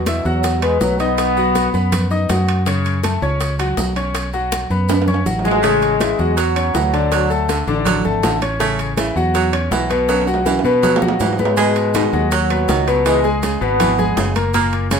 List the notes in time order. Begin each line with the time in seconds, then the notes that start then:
Already playing: E2 B2
0.06 E4 E5 E6, high bongo, high conga, high timbale, maracas
0.25 E2 F#3 F#4 F#5 F#6, maracas
0.43 high bongo, high conga, high timbale, maracas
0.62 G#3 B3 B4 B5, high conga, high timbale, maracas
0.81 B1 F#3, high bongo, low bongo, high conga, maracas
0.99 B3 D#4 D#5 D#6, high conga, high timbale, maracas
1.18 high bongo, high conga, high timbale, maracas
1.37 F#3 F#4 F#5, high bongo, high conga, maracas
1.55 high bongo, high conga, high timbale, maracas
1.74 F#2 B3 B4 B5, high bongo, high conga, maracas
1.92 high bongo, high conga, low conga, high timbale, maracas
2.11 D#4 D#5 D#6, high bongo, high conga, maracas
2.29 F#2 F#3 F#4 F#5, high bongo, low bongo, high conga, high timbale, low timbale, maracas
2.48 high timbale, maracas
2.66 C#3 C#4 C#5, high bongo, high conga, high timbale, maracas
2.85 high conga, high timbale, maracas
3.03 A3 A4 A5, high bongo, high conga, high timbale, maracas
3.22 C#2 C#4 C#5 C#6, maracas
3.40 high bongo, high conga, high timbale, maracas
3.59 F#3 F#4 F#5, high conga, high timbale, maracas
3.77 B1, high bongo, low bongo, high conga, low timbale, maracas
3.96 C#4 C#5 C#6, high conga, high timbale, maracas
4.15 high bongo, high conga, high timbale, maracas
4.33 F#3 F#4 F#5, high bongo, high conga, maracas
4.52 high bongo, high conga, high timbale, maracas
4.70 F#2 B3 B4 B5, high conga, maracas
4.89 high bongo, high conga, high timbale, maracas
5.02 high timbale
5.07 C#4 C#5 C#6, low conga, maracas
5.14 high timbale
5.26 A1 F#3 F#4 F#5, low bongo, low conga, maracas
5.39 low timbale
5.44 G#3, low bongo, low conga, maracas
5.51 low timbale
5.62 C#3 A3 C#4 C#5, high bongo, high conga, high timbale, maracas
5.82 high conga, high timbale, maracas
6.00 C#3 E3 E4 E5, high bongo, high conga, high timbale, maracas
6.19 E2 F#3 F#4 F#5, maracas
6.36 F#3, high bongo, high conga, high timbale, maracas
6.56 C#4 C#5 C#6, high conga, high timbale, maracas
6.74 D2 E3 F#3 F#4 F#5, high bongo, low bongo, high conga, low timbale, maracas
6.93 D3 D4 D5, high conga, high timbale, maracas
7.11 F#3, high bongo, high conga, high timbale, maracas
7.30 A3 A4 A5, high bongo, high conga, maracas
7.48 D3, high bongo, high conga, high timbale, maracas
7.67 A1 D3 D4 D5, high bongo, high conga, maracas
7.75 E3
7.82 D3 F#3, high conga, low conga, maracas
7.86 high bongo, high timbale
8.04 G#1 A3 A4 A5, high bongo, high conga, low conga, maracas
8.23 A1 D3, high bongo, low bongo, high conga, high timbale, low timbale, maracas
8.42 C#4 C#5 C#6, high conga, high timbale, maracas
8.60 C#3 A3 C#4 C#5, high bongo, high conga, high timbale, maracas
8.79 high conga, high timbale, maracas
8.97 C#3 E3 E4 E5, high bongo, high conga, high timbale, maracas
9.16 E2 F#3 F#4 F#5, maracas
9.34 F#3, high bongo, high conga, high timbale, maracas
9.53 C#4 C#5 C#6, high conga, high timbale, maracas
9.71 B1 E3 F#3 F#4 F#5, high bongo, low bongo, high conga, low timbale, maracas
9.90 B2 B3 B4, high conga, high timbale, maracas
10.08 F#3, high bongo, high conga, high timbale, maracas
10.22 high timbale
10.27 F#3 F#4 F#5, high bongo, high conga, maracas
10.34 low timbale
10.45 E3, high bongo, high conga, high timbale, maracas
10.59 high timbale
10.64 B2 B3 B4, high bongo, high conga, maracas
10.83 F#3, high bongo, high conga, low conga, low timbale, maracas
10.96 low timbale
11.01 F#3 F#4 F#5, high bongo, high conga, low conga, maracas
11.08 low timbale
11.20 G#2 E3, low bongo, high conga, low timbale, maracas
11.33 low timbale
11.38 G#3 B3 B4 B5, low bongo, high conga, maracas
11.45 low timbale
11.57 B2 G#3 B3 B4, high bongo, high conga, high timbale, maracas
11.76 high conga, high timbale, maracas
11.94 B2 D#3 D#4 D#5, high bongo, high conga, high timbale, maracas
12.13 D#2 F#3 F#4 F#5, maracas
12.31 F#3, high bongo, high conga, high timbale, maracas
12.50 B3 B4 B5, high conga, high timbale, maracas
12.68 C#2 D#3 F#3 F#4 F#5, high bongo, low bongo, high conga, low timbale, maracas
12.87 B2 B3 B4, high conga, high timbale, maracas
13.06 E3 G#3, high bongo, high conga, high timbale, maracas
13.24 G#3 G#4 G#5, high bongo, high conga, maracas
13.43 C#3, high bongo, high conga, high timbale, maracas
13.61 G#1 B2 B3 B4, high bongo, high conga, maracas
13.80 E3, high bongo, high conga, low conga, high timbale, maracas
13.98 G#3 G#4 G#5, high bongo, high conga, low conga, maracas
14.17 F#1 C#3, high bongo, low bongo, high conga, high timbale, low timbale, maracas
14.35 A#3 A#4 A#5, high conga, high timbale, maracas
14.54 A#2 A#3 A#4, high bongo, high conga, high timbale, maracas
14.72 high conga, high timbale, maracas
14.91 C#3 C#4 C#5, high bongo, high conga, high timbale, maracas